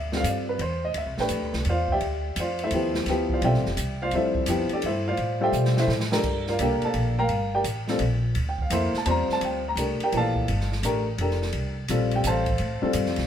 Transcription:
Already playing: D2 E5
0.12 G3 C4 F4 A4, snare
0.17 F5
0.23 G2, hi-hat pedal, ride
0.28 D5
0.49 B4
0.59 E2 C5, ride
0.85 D#5
0.94 D2 E5, ride
1.06 C2
1.18 A1 A3 D4 G4 B4 G5, snare
1.29 F2, hi-hat pedal, ride
1.42 D2
1.53 C2, snare
1.65 E2, ride
1.69 F4 C5 D5 F5
1.88 E5 G5, kick
1.93 G4 D5
2.00 D2, ride
2.36 F2 D5 F5, hi-hat pedal, ride
2.40 F4 C5
2.59 ride
2.64 E4 A4 C5 E5
2.71 D#2 F3 B3 E4 G4, ride
2.94 snare
3.06 D2 F3 B3 E4 G4, snare, ride
3.30 F4 D5 F5, kick
3.34 C5
3.42 B1 G3 C4 F4 G4 A4 D5 E5 G5, ride
3.54 A1, snare
3.66 F1, snare
3.77 C2, hi-hat pedal, ride
4.02 F4 C5 D5 F5
4.11 D2 F3 G3 C4 A4, ride
4.15 E4 C5 E5
4.35 kick
4.46 F2 F3 B3 E4 G4, hi-hat pedal, ride
4.69 muted upright bass stroke, ride
4.73 D4 G4 A4 D5
4.82 G2 E5, ride
4.86 E4 A4 C5
5.08 F4 C5 D5 F5
5.17 A2, ride
5.41 G3 F4 G4 A4 C5 D5 E5 G5
5.52 B2, hi-hat pedal
5.65 snare
5.77 E4 A4 C5 E5, snare
5.88 A2, snare
6.00 snare
6.12 D4 G4 A4 A#4, snare
6.23 G2, kick, crash
6.47 F4 A#4 D5 F5, snare
6.59 C2 A#3 D4 G4 A4 A#4 G5, hi-hat pedal, ride
6.63 D5
6.82 A4 D5 A5, muted upright bass stroke, ride
6.86 F5
6.94 A#1, ride
7.19 A#4 F5 G5 A#5
7.28 G1, ride
7.55 G4 A#4 D5 G5
7.64 A1, hi-hat pedal, ride
7.88 G3 C4 F4 A4, snare
7.99 A#1, ride
8.35 D2, ride
8.49 G5
8.59 F5, kick
8.70 F2 A#3 E4 A4 C5, hi-hat pedal, ride
8.75 E5
8.94 muted upright bass stroke, snare
8.98 A5
9.06 E2 G3 C4 F4 C5 A5, ride
9.10 A#5
9.29 muted upright bass stroke, snare
9.33 A5
9.41 D2 G5, ride
9.68 A#5
9.76 C2 A3 D4 G4 A#4, hi-hat pedal, ride
10.00 G5, muted upright bass stroke, ride
10.04 G4 A#4 D5
10.12 A#1 E3 F3 A#3 G4, ride
10.17 A4 D5 F5 A5
10.36 kick
10.48 G1, ride
10.60 snare
10.72 snare
10.83 A1 A3 D4 G4 A#4, hi-hat pedal, ride
11.18 F1 D4 G4 A4 A#4, ride
11.31 snare
11.42 snare
11.53 C2, ride
11.88 A#1 G3 C4 F4 A4, hi-hat pedal, ride
12.11 ride
12.16 G4 G5
12.24 A1 A4 F5 A5, hi-hat pedal, ride
12.28 C5
12.46 kick, ride
12.58 A2, ride
12.82 G3 C4 F4 A4, muted upright bass stroke
12.93 G2, hi-hat pedal, ride
13.06 F2, snare
13.16 C2, snare, ride

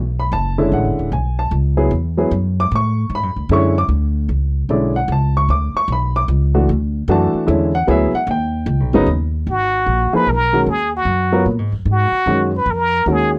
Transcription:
Already playing: B1
0.20 B5
0.32 F#1 A5
0.58 D3 G#3 C#4 E4
0.72 A1 F#5
0.85 F#1
0.99 D1
1.12 B1 G#5
1.39 A5
1.51 C#2
1.77 F#3 B3 E4 G#4
1.91 E2
2.17 F#3 B3 E4 G#4
2.31 F#2
2.60 D6
2.71 A2
2.76 C#6
3.10 G#2
3.15 B5
3.23 F#2
3.36 D2
3.49 F#2 D3 G#3 C#4 E4 C#6
3.78 D6
3.89 D2
4.29 C#2
4.69 B1 D3 G#3 C#4 E4 D5
4.96 F#5
5.08 C#2
5.12 A5
5.37 C#6
5.49 D2 D6
5.74 C#6, muted upright bass stroke
5.88 B1
5.92 B5
6.16 D6
6.28 C#2
6.54 E3 A3 D4 F#4
6.69 D2
7.08 F#2 E3 A3 D4 F#4 A5
7.34 muted upright bass stroke
7.47 E2 D3 G#3 C#4 E4
7.75 F#5
7.87 D2 F#3 B3 E4 G#4 E5
8.13 F#5, muted upright bass stroke
8.27 D#2
8.31 G5
8.66 C#2
8.80 B1
8.93 G1 C#3 F#3 B3 D#4
9.06 D#2
9.47 G#1
9.51 F#4
9.86 A#1
10.13 F3 A#3 D#4 G#4 B4, muted upright bass stroke
10.27 B1 A#4
10.53 D#3 G#3 C#4 F#4
10.66 D#2 G#4
10.96 F#4
11.05 F#2
11.32 F#3 B3 F4 A#4
11.46 A#2
11.59 G#2
11.72 F#2
11.85 G#2
11.92 F#4
12.12 muted upright bass stroke
12.26 F#2 D#3 G#3 C#4 F#4
12.57 B4
12.66 F2
12.70 A#4
13.06 D#2 D#3 G#3 C#4 F#4
13.12 G#4

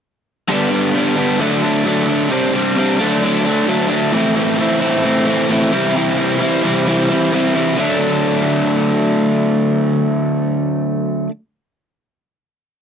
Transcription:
0.48 G2 D3 G3 B3 D4
0.71 G3 B3 D4
0.94 D3 G3 B3 D4
1.16 G2 D3 G3 B3 D4
1.39 D3 F#3 A3 D4
1.62 F#3 A3 D4
1.84 D3 F#3 A3
1.88 D4
2.07 F#3 A3 D4
2.30 C3 G3 C4 D4
2.53 G3 C4 D4
2.76 C3 G3 C4 D4
2.99 D3 F#3 A3 D4
3.22 D3 F#3 A3 D4
3.45 F#3 A3 D4
3.67 D3 F#3 A3 D4
3.89 F#3 A3 D4
4.12 A2 E3 A3 C4 E4
4.36 A3 C4 E4
4.58 E3 A3 C4 E4
4.81 A2 E3 A3 C4 E4
5.04 E3 A3 C4 E4
5.27 A3 C4 E4
5.49 A2 E3 A3 C4 E4
5.72 C3 E3 G3 C4 E4
5.94 C3 E3 G3 C4 E4
6.17 G3 C4 E4
6.39 E3 G3 C4 E4
6.62 E3 G3 C4 E4
6.66 C3
6.86 E3 G3 C4 E4
7.09 G3 C4 E4
7.32 C3 E3 G3 C4 E4
7.55 G3 C4 E4
7.77 D3 F#3 A3
7.81 D4

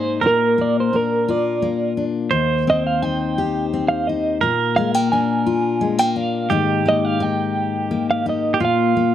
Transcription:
Already playing: G#2 A#3 D#4 G#4 C5
0.21 A#2 A#4
0.27 A#4
0.58 A#3 D5
0.80 C5
0.93 D4 A#4
1.28 F4 D5
1.62 A#3
1.97 D4
2.31 D#2 C5
2.67 C4 D#5
2.87 F5
3.02 D#4 G5
3.38 G4
3.73 C4
3.88 F5
4.07 D#4 D#5
4.41 A#2 A#4
4.76 G#3 F5
4.94 A#3 G5
5.12 D4 G#5
5.46 F4
5.81 G#3
5.98 A#3 G5
6.16 D4 F5
6.50 G#2 D#3 A#3 D#4 G4
6.86 A#3 D#5
7.05 F5
7.20 D#4 G5
7.91 A#3
8.11 F5
8.26 D#4 D#5
8.54 G4
8.60 A#2 F4
8.65 F5
8.97 A#3

